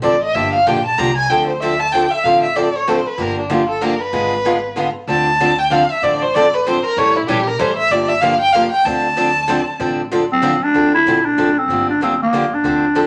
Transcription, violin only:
0.04 0.22 D5 medium
0.23 0.36 D#5 medium
0.34 0.52 E5 medium
0.53 0.68 F5 medium
0.67 0.84 G5 medium
0.85 0.99 A5 medium
0.98 1.16 A#5 medium
1.16 1.31 G#5 medium
1.30 1.47 G5 medium
1.48 1.62 C5 medium
1.60 1.81 E5 medium
1.80 1.94 A5 loud
1.92 2.12 G5 medium
2.11 2.25 E5 medium
2.24 2.42 F5 medium
2.43 2.57 E5 medium
2.56 2.77 D5 medium
2.76 2.90 C#5 medium
2.88 3.08 C5 medium
3.07 3.23 B4 medium
3.22 3.39 A#4 medium
3.39 3.52 D4 medium
3.51 3.69 F4 medium
3.69 3.84 A4 medium
3.82 4.02 A#4 medium
4.01 4.76 B4 medium
5.09 5.60 A5 loud
5.59 5.73 G5 medium
5.71 5.92 F5 medium
5.91 6.05 E5 loud
6.03 6.24 D5 medium
6.23 6.36 C5 medium
6.34 6.55 D5 loud
6.54 6.67 B4 medium
6.66 6.84 C5 medium
6.85 6.99 A#4 loud
6.98 7.18 C#5 medium
7.16 7.29 E4 medium
7.27 7.49 G4 medium
7.47 7.61 A#4 medium
7.59 7.77 C5 medium
7.77 7.93 E5 loud
7.91 8.10 D5 medium
8.08 8.22 E5 medium
8.21 8.40 F5 medium
8.40 8.54 G5 loud
8.52 8.71 F5 medium
8.72 8.87 G5 loud
8.85 9.80 A5 loud

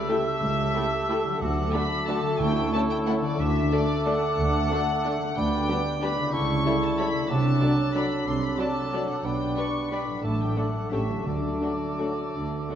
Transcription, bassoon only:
0.00 1.37 A3 medium
1.42 3.22 A3 medium
3.39 5.33 A3 medium
5.37 5.98 G3 medium
6.02 6.32 G3 medium
6.33 7.27 G3 medium
7.30 8.25 F#3 medium
8.27 8.59 F#3 soft
8.59 9.26 F#3 soft
9.25 9.91 G3 medium
9.92 10.26 G3 soft
10.24 10.55 A3 soft
10.56 10.90 A3 soft
10.92 11.25 A3 soft
11.26 12.75 A3 soft

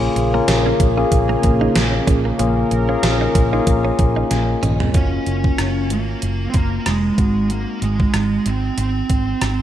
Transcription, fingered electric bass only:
0.16 0.39 A#1 medium
0.48 0.71 A#1 medium
0.80 1.03 A#1 loud
1.12 1.35 A#1 loud
1.44 1.67 A#1 loud
1.76 1.99 A#1 medium
2.07 2.30 A#1 medium
2.40 2.63 A#1 medium
2.71 2.94 A#1 medium
3.03 3.26 A#1 medium
3.35 3.58 A#1 medium
3.67 3.90 A#1 loud
3.99 4.22 A#1 medium
4.31 4.54 A#1 medium
4.63 4.86 A#1 medium
4.95 5.18 F#1 medium
5.27 5.50 F#1 medium
5.59 5.91 F#1 medium
5.91 6.14 G#1 medium
6.23 6.46 F#1 medium
6.54 6.77 F#1 medium
6.87 7.09 F1 medium
7.18 7.64 G#1 medium
7.82 8.05 G#1 medium
8.14 8.37 G#1 medium
8.46 8.69 G#1 medium
8.78 9.01 G#1 medium
9.10 9.33 G#1 medium
9.42 9.62 G#1 medium

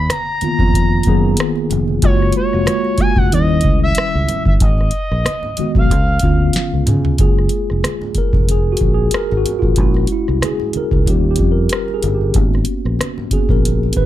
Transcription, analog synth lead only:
0.00 0.13 B5 loud
0.11 1.71 A#5 loud
2.03 2.33 C#5 medium
2.37 3.02 C#5 loud
3.00 3.19 G#5 loud
3.18 3.32 F#5 loud
3.33 3.79 D#5 loud
3.83 4.43 E5 loud
4.47 4.54 E5 medium
4.62 5.72 D#5 loud
5.78 6.84 F5 medium

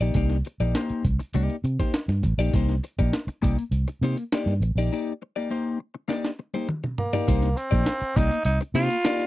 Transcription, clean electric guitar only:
0.01 0.14 A#3 soft
0.01 0.15 D#4 soft
0.01 0.15 G4 medium
0.01 0.15 D5 medium
0.15 0.36 A#3 medium
0.15 0.36 D#4 medium
0.15 0.37 G4 medium
0.15 0.37 D5 medium
0.46 muted clean electric guitar stroke soft
0.60 0.74 A#3 medium
0.60 0.74 D#4 medium
0.60 0.75 G4 medium
0.60 0.76 D5 medium
0.75 1.02 A#3 medium
0.75 1.03 D#4 medium
0.75 1.03 G4 medium
0.75 1.03 C5 medium
1.05 muted clean electric guitar stroke soft
1.19 muted clean electric guitar stroke medium
1.34 1.55 A#3 medium
1.34 1.55 D#4 medium
1.34 1.55 G4 medium
1.34 1.55 D5 medium
1.64 muted clean electric guitar stroke soft
1.80 1.93 A#3 soft
1.80 1.93 D#4 soft
1.80 1.93 G4 soft
1.80 1.93 C5 medium
1.94 muted clean electric guitar stroke soft
2.09 muted clean electric guitar stroke soft
2.39 2.53 A#3 medium
2.39 2.53 D#4 medium
2.39 2.54 G4 medium
2.39 2.55 D5 medium
2.54 2.74 A#3 medium
2.54 2.74 D#4 medium
2.54 2.75 G4 medium
2.54 2.75 C5 medium
2.83 muted clean electric guitar stroke soft
2.99 3.15 A#3 medium
2.99 3.15 D#4 medium
2.99 3.14 G4 medium
2.99 3.14 D5 medium
3.28 muted clean electric guitar stroke soft
3.42 3.63 A#3 medium
3.42 3.58 D#4 medium
3.42 3.57 G4 medium
3.42 3.58 D5 medium
3.58 muted clean electric guitar stroke soft
3.88 muted clean electric guitar stroke soft
4.03 4.23 A#3 medium
4.03 4.17 D#4 medium
4.03 4.17 G4 medium
4.03 4.16 C5 medium
4.17 muted clean electric guitar stroke soft
4.33 4.52 A#3 medium
4.33 4.53 D#4 medium
4.33 4.53 G4 medium
4.33 4.53 D5 medium
4.62 muted clean electric guitar stroke soft
4.78 4.91 A#3 soft
4.78 4.91 D#4 medium
4.78 4.92 G4 medium
4.78 4.92 D5 medium
4.92 5.12 A#3 medium
4.92 5.12 D#4 medium
4.92 5.12 G4 medium
4.92 5.13 D5 medium
5.22 muted clean electric guitar stroke soft
5.36 5.49 A#3 medium
5.36 5.49 D#4 soft
5.36 5.50 G4 medium
5.36 5.51 D5 medium
5.50 5.77 A#3 medium
5.50 5.78 D#4 medium
5.50 5.78 G4 medium
5.50 5.78 C5 medium
5.79 muted clean electric guitar stroke soft
5.94 muted clean electric guitar stroke soft
6.08 6.29 A#3 medium
6.08 6.29 D#4 medium
6.08 6.30 G4 medium
6.08 6.30 D5 medium
6.39 muted clean electric guitar stroke soft
6.54 6.68 A#3 medium
6.54 6.69 D#4 soft
6.54 6.69 G4 medium
6.54 6.69 C5 medium
6.84 muted clean electric guitar stroke soft
7.13 7.26 A#3 medium
7.13 7.27 D#4 medium
7.13 7.27 G4 medium
7.13 7.28 D5 medium
7.27 7.48 A#3 medium
7.27 7.48 D#4 medium
7.27 7.48 G4 medium
7.27 7.48 C5 medium
7.56 muted clean electric guitar stroke soft
7.71 7.88 A#3 medium
7.71 7.88 D#4 medium
7.71 7.88 G4 medium
7.71 7.87 D5 medium
8.01 muted clean electric guitar stroke soft
8.16 8.37 A#3 medium
8.16 8.31 D#4 medium
8.16 8.31 G4 medium
8.16 8.31 D5 medium
8.31 muted clean electric guitar stroke medium
8.61 muted clean electric guitar stroke medium
8.75 8.95 A#3 medium
8.75 8.90 D#4 loud
8.75 8.90 G4 loud
8.75 8.89 C5 medium
8.90 muted clean electric guitar stroke soft
9.05 9.25 A#3 medium
9.05 9.25 D#4 medium
9.05 9.25 G4 medium
9.05 9.26 D5 medium

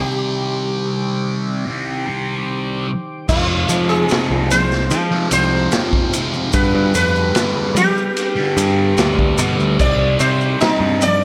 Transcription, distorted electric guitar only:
0.00 1.65 C3 medium
0.00 1.65 G3 medium
0.00 1.66 C4 medium
1.66 2.05 C3 medium
1.66 2.06 G3 medium
1.66 2.05 C4 medium
2.06 2.88 C3 medium
2.06 2.87 G3 medium
2.06 2.86 C4 medium
3.29 3.69 F2 loud
3.29 3.71 C3 loud
3.29 3.72 F3 loud
3.70 4.08 F2 medium
3.70 4.10 C3 medium
3.70 4.11 F3 medium
4.09 4.49 F2 medium
4.09 4.32 C3 loud
4.09 4.29 F3 loud
4.31 4.50 C3 medium
4.31 4.50 F3 medium
4.50 muted distorted electric guitar stroke soft
5.11 5.32 C3 medium
5.11 5.33 F3 medium
5.31 5.71 F2 medium
5.31 5.72 C3 medium
5.31 5.74 F3 medium
5.72 6.11 F2 loud
5.72 5.93 C3 loud
5.72 5.91 F3 loud
5.92 6.13 C3 medium
5.92 6.14 F3 medium
6.12 6.52 F2 medium
6.12 6.35 C3 medium
6.12 6.32 F3 medium
6.33 6.53 C3 medium
6.33 6.52 F3 medium
6.52 6.92 G2 loud
6.52 6.93 D3 loud
6.52 6.95 G3 loud
6.93 7.32 G2 medium
6.93 7.33 D3 medium
6.93 7.36 G3 medium
7.34 7.74 G2 medium
7.34 7.56 D3 medium
7.34 7.55 G3 loud
7.55 7.74 D3 medium
7.55 7.75 G3 medium
7.75 muted distorted electric guitar stroke medium
8.36 8.57 D3 medium
8.36 8.59 G3 medium
8.57 8.96 G2 medium
8.57 8.98 D3 medium
8.57 9.00 G3 medium
8.97 9.36 G2 medium
8.97 9.18 D3 loud
8.97 9.16 G3 loud
9.16 9.37 D3 medium
9.16 9.39 G3 medium
9.37 9.76 G2 medium
9.37 9.59 D3 medium
9.37 9.57 G3 medium
9.57 9.78 D3 medium
9.57 9.79 G3 medium
9.78 10.17 C3 medium
9.78 10.20 G3 loud
9.78 10.20 C4 loud
10.18 10.58 C3 medium
10.18 10.61 G3 medium
10.18 10.62 C4 medium
10.59 11.00 C3 medium
10.59 10.83 G3 loud
10.59 10.80 C4 medium
10.81 11.01 G3 medium
10.81 11.01 C4 medium
11.01 muted distorted electric guitar stroke medium

